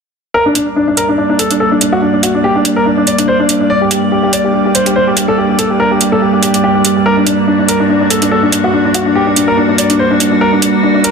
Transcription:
0.34 G2 G3 A#3 D4 A#4 D5
0.46 D4
0.55 D4, closed hi-hat
0.76 D4
0.88 D4
0.97 A#4, closed hi-hat
1.09 D4
1.18 D4
1.30 D4
1.39 A4, closed hi-hat
1.51 D4, closed hi-hat
1.60 A4
1.72 D4
1.81 D4, closed hi-hat
1.92 F#4
2.02 D4
2.14 D4
2.23 F#4, closed hi-hat
2.34 D4
2.44 G4
2.55 D4
2.65 D4, closed hi-hat
2.76 A#4
2.86 D4
2.97 D4
3.07 D5, closed hi-hat
3.18 D4, closed hi-hat
3.28 C5
3.39 D4
3.49 D4, closed hi-hat
3.60 D4
3.70 D5
3.81 G4
3.91 G4, closed hi-hat
4.12 G4
4.23 G4
4.33 D5, closed hi-hat
4.44 G4
4.54 G4
4.65 G4
4.75 C5, closed hi-hat
4.86 G4, closed hi-hat
4.96 C5
5.07 G4
5.17 closed hi-hat
5.28 A4
5.38 G4
5.49 G4
5.59 A4, closed hi-hat
5.70 G4
5.80 A#4
5.91 G4
6.01 G4, closed hi-hat
6.12 A4
6.22 G4
6.33 G4
6.43 G4, closed hi-hat
6.54 G4, closed hi-hat
6.64 G4
6.75 G4
6.85 G4, closed hi-hat
6.96 G4
7.06 F#4 A#4
7.17 D4
7.27 D4, closed hi-hat
7.48 D4
7.59 D4
7.68 A#4, closed hi-hat
7.80 D4
7.89 D4
8.01 D4
8.10 A4, closed hi-hat
8.22 D4, closed hi-hat
8.31 A4
8.43 D4
8.52 D4, closed hi-hat
8.64 F#4
8.73 D4
8.85 D4
8.94 F#4, closed hi-hat
9.06 D4
9.15 G4
9.27 D4
9.36 D4, closed hi-hat
9.48 A#4
9.57 D4
9.69 D4
9.78 D5, closed hi-hat
9.90 D4, closed hi-hat
9.99 C5
10.11 D4
10.20 D4, closed hi-hat
10.32 D4
10.41 A#4
10.53 D4
10.62 D4, closed hi-hat
10.83 D4
10.95 D4
11.04 A#4, closed hi-hat

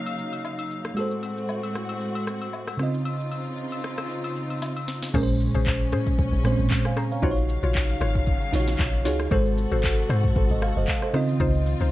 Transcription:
Already playing: C#3 F#3 A#3 D#4 F#4 C#5 F5
0.06 high agogo, shaker
0.19 shaker
0.33 high agogo, shaker
0.45 low woodblock, shaker
0.59 high agogo, shaker
0.71 shaker
0.85 cross-stick, shaker
0.95 A2 G#3 C4 F#4 A4, high agogo, shaker
1.00 C5
1.11 shaker
1.23 high agogo, shaker
1.37 shaker
1.49 low woodblock, shaker
1.63 high agogo, shaker
1.75 cross-stick, shaker
1.89 high agogo, shaker
2.00 shaker
2.15 high agogo, shaker
2.27 cross-stick, shaker
2.42 high agogo, shaker
2.53 low woodblock, shaker
2.67 cross-stick, high agogo, shaker
2.77 C#3 C4 D#4 F4, cross-stick, shaker
2.83 D#5
2.94 shaker
3.05 high agogo, shaker
3.20 shaker
3.32 high agogo, shaker
3.46 shaker
3.58 shaker
3.72 high agogo, shaker
3.84 cross-stick, shaker
3.98 cross-stick, high agogo, shaker
4.09 shaker
4.24 high agogo, shaker
4.36 shaker
4.50 high agogo, shaker
4.62 snare, low woodblock, shaker
4.76 high agogo, shaker
4.88 snare, shaker
5.03 snare, shaker
5.14 A#1 A#2 C#3 G#3 C#4 G#4 A#4 C5, kick, crash, shaker
5.23 C5
5.29 shaker
5.41 open hi-hat, shaker
5.55 A#1 C#4 G#4 C5, shaker
5.67 kick, clap, shaker
5.81 shaker
5.92 A#2 C#4 G#4 C5, cross-stick, open hi-hat, shaker
6.07 kick, shaker
6.18 A#1, kick, shaker
6.33 A#1, shaker
6.44 A#2 G#3 C4 C5, cross-stick, open hi-hat, shaker
6.52 C#4
6.59 G#1, shaker
6.70 kick, clap, shaker
6.85 F5 G#5, cross-stick, shaker
6.97 C#4 G#4 C5 A#5, cross-stick, open hi-hat, shaker
7.12 C#5 F5, shaker
7.22 A#1 C#3 F#3 D#4 F4 F#4 C5 C#5 F5, kick, shaker
7.31 C#5
7.37 shaker
7.49 open hi-hat, shaker
7.63 A#1 F4 F#4 C#5, shaker
7.75 kick, clap, shaker
7.90 shaker
8.01 G#1 F4 F#4 C#5, cross-stick, open hi-hat, shaker
8.15 kick, shaker
8.26 kick, shaker
8.42 shaker
8.53 A#1 D#4 F4 C#5, snare, open hi-hat, shaker
8.60 F#4
8.68 snare, shaker
8.79 A#1, kick, clap, shaker
8.93 shaker
9.05 C#2 D#4 F4 F#4 G#4 C#5, snare, open hi-hat, shaker
9.20 cross-stick, shaker
9.31 G#1 C3 G#3 F#4 A4 C5, kick, shaker
9.46 shaker
9.58 open hi-hat, shaker
9.72 G#1 F#4 A4 C5, shaker
9.84 kick, clap, shaker
9.99 shaker
10.09 G#2 F#4 A4 C5, cross-stick, open hi-hat, shaker
10.24 kick, shaker
10.35 G#1 A4 C5, kick, shaker
10.50 G#1 C5 D#5, shaker
10.62 F5, cross-stick, open hi-hat, shaker
10.76 F#1 C5 D#5, shaker
10.88 kick, clap, shaker
11.02 A4 C5, cross-stick, shaker
11.13 C#3 D#3 C4 D#4 F4 C5 D#5, cross-stick, open hi-hat, shaker
11.29 shaker
11.40 C#2 D#4 F4 C5, kick, shaker
11.55 shaker
11.66 open hi-hat, shaker
11.80 C#2 D#4 F4 C5, shaker

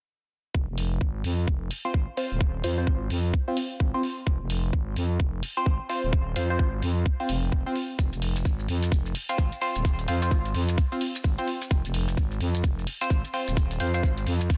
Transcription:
0.55 F1, kick
0.69 F1
0.78 open hi-hat
1.01 G#1, kick
1.24 F2, open hi-hat
1.48 F1, kick
1.71 open hi-hat
1.85 C4 F4 C5
1.94 G#1, kick
2.17 C4 F4 C5, open hi-hat
2.31 D#1
2.41 kick
2.64 F2 C4 F4 C5, open hi-hat
2.78 C4 F4 C5
2.87 G#1, kick
3.10 F2, open hi-hat
3.34 kick
3.48 C4 F4 C5
3.57 open hi-hat
3.80 G#1, kick
3.94 C4 F4 C5
4.03 open hi-hat
4.27 F1, kick
4.41 F1
4.50 open hi-hat
4.73 G#1, kick
4.96 F2, open hi-hat
5.20 F1, kick
5.43 open hi-hat
5.57 C4 F4 C5
5.66 G#1, kick
5.89 C4 F4 C5, open hi-hat
6.04 D#1
6.13 kick
6.36 F2 C4 F4 C5, open hi-hat
6.50 C4 F4 C5
6.59 G#1, kick
6.82 F2, open hi-hat
7.06 kick
7.20 C4 F4 C5
7.29 F1, open hi-hat
7.52 kick
7.66 C4 F4 C5
7.76 open hi-hat
7.99 F1, kick, maracas
8.13 F1, closed hi-hat, maracas
8.22 open hi-hat
8.36 closed hi-hat, maracas
8.45 G#1, kick, maracas
8.59 maracas
8.68 F2, open hi-hat
8.83 closed hi-hat, maracas
8.92 F1, kick, maracas
9.06 maracas
9.15 open hi-hat
9.29 C4 F4 C5, closed hi-hat, maracas
9.38 G#1, kick, maracas
9.52 closed hi-hat, maracas
9.61 C4 F4 C5, open hi-hat
9.75 D#1, closed hi-hat, maracas
9.85 kick, maracas
9.99 closed hi-hat, maracas
10.08 F2 C4 F4 C5, open hi-hat
10.22 C4 F4 C5, closed hi-hat, maracas
10.31 G#1, kick, maracas
10.45 closed hi-hat, maracas
10.55 F2, open hi-hat
10.69 closed hi-hat, maracas
10.78 kick, maracas
10.92 C4 F4 C5, maracas
11.01 open hi-hat
11.15 closed hi-hat, maracas
11.24 G#1, kick, maracas
11.38 C4 F4 C5, closed hi-hat, maracas
11.48 open hi-hat
11.62 closed hi-hat, maracas
11.71 F1, kick, maracas
11.85 F1, closed hi-hat, maracas
11.94 open hi-hat
12.08 closed hi-hat, maracas
12.17 G#1, kick, maracas
12.31 maracas
12.41 F2, open hi-hat
12.55 closed hi-hat, maracas
12.64 F1, kick, maracas
12.79 maracas
12.87 open hi-hat
13.01 C4 F4 C5, closed hi-hat, maracas
13.10 G#1, kick, maracas
13.24 closed hi-hat, maracas
13.34 C4 F4 C5, open hi-hat
13.47 D#1, closed hi-hat, maracas
13.57 kick, maracas
13.71 closed hi-hat, maracas
13.80 F2 C4 F4 C5, open hi-hat
13.94 C4 F4 C5, closed hi-hat, maracas
14.03 G#1, kick, maracas
14.18 closed hi-hat, maracas
14.27 F2, open hi-hat
14.41 closed hi-hat, maracas
14.50 kick, reverse cymbal, maracas

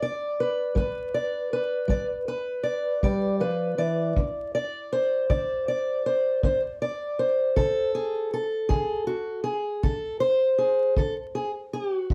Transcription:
Already playing: G3
0.02 D5
0.40 B4
0.75 G3 B4, kick
1.14 D5
1.53 B4
1.88 G3 D5, kick
2.28 B4
2.63 D5
3.03 G3 D5, kick
3.40 F3 B4
3.78 E3 D5
4.17 D3, kick
4.55 D5
4.93 C5
5.30 D3 D5, kick
5.68 D5
6.06 C5
6.43 D3 C5, kick
6.82 D5
7.19 C5
7.56 D3 A4, kick
7.95 G#4
8.33 A4
8.69 G#4, kick
8.74 D3
9.07 F#4
9.44 G#4
9.83 D3 A4, kick
10.20 C5
10.58 G#4
10.97 D3 A4, kick
11.35 G#4
11.73 G4
11.96 F#4
12.10 kick

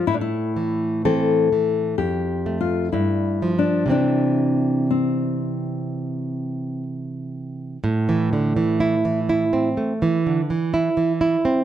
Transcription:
0.07 A2 E4
0.14 D4
0.21 E4
0.56 E3
1.05 E3 C4 A4
1.53 E3
1.98 F2 G4
2.46 A3
2.61 F4
2.92 G2 E4
3.42 F3
3.59 D4
3.86 C3 E3 C4
3.91 D4
4.90 C4
7.84 A2
8.09 E3
8.33 D3
8.57 E3
8.80 E4
9.05 E3
9.29 E4
9.53 C4
9.77 A3
10.02 E3
10.26 D3
10.50 E3
10.74 E4
10.97 E3
11.21 E4
11.45 C4

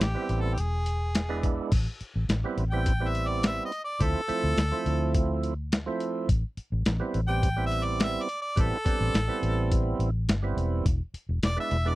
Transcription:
0.01 A1 G4, snare, closed hi-hat
0.14 G3 B3 C4 E4
0.29 A1, closed hi-hat
0.41 A4
0.54 G4, closed hi-hat
0.58 E1 G#4
0.86 closed hi-hat
1.15 snare, closed hi-hat
1.29 G#3 B3 D4 E4
1.43 kick, closed hi-hat
1.72 A1, kick, closed hi-hat, crash
2.01 muted fingered electric bass stroke, closed hi-hat
2.16 A1
2.29 A1, snare, closed hi-hat
2.44 G3 B3 C4 E4
2.57 A1, closed hi-hat
2.71 G3 B3 C4 E4 G5
2.86 kick, closed hi-hat
3.00 G3 B3 C4 E4
3.08 E5
3.15 closed hi-hat
3.28 D5
3.43 E5, snare, closed hi-hat
3.65 D#5
3.72 closed hi-hat
3.84 D5
3.99 D2 F3 A3 C4 E4 A4, kick, closed hi-hat
4.28 F3 A3 C4 E4, muted fingered electric bass stroke, closed hi-hat
4.44 D2
4.58 D2, snare, closed hi-hat
4.72 F3 A3 C4 E4
4.86 D2, closed hi-hat
5.14 kick, closed hi-hat
5.43 closed hi-hat
5.72 snare, closed hi-hat
5.86 F3 A3 C4 E4
6.00 closed hi-hat
6.29 A1, kick, closed hi-hat
6.57 muted fingered electric bass stroke, closed hi-hat
6.72 A1
6.86 A1, snare, closed hi-hat
7.00 G3 B3 C4 E4
7.14 A1, closed hi-hat
7.27 G3 B3 C4 G4 G5
7.43 kick, closed hi-hat
7.57 G3 B3 C4 E4
7.66 E5
7.72 closed hi-hat
7.85 D5
8.00 E5, snare, closed hi-hat
8.22 D5
8.29 closed hi-hat
8.42 D5
8.56 A1 G3 B3 C4 E4, kick, closed hi-hat
8.61 A4
8.85 G3 B3 C4 D4, muted fingered electric bass stroke, kick, closed hi-hat
9.01 A1
9.14 A1, snare, closed hi-hat
9.28 G3 B3 C4 E4
9.43 A1, closed hi-hat
9.71 kick, closed hi-hat
9.99 A1, closed hi-hat
10.28 G1, snare, closed hi-hat
10.42 G3 B3 C4 E4
10.57 E1, closed hi-hat
10.86 E1, kick, closed hi-hat
11.14 muted fingered electric bass stroke, closed hi-hat
11.29 E1
11.43 E1 D5, snare, closed hi-hat
11.56 G#3 B3 D4 E4 E5
11.71 E1, closed hi-hat
11.85 G#3 B3 D4 E4 D5

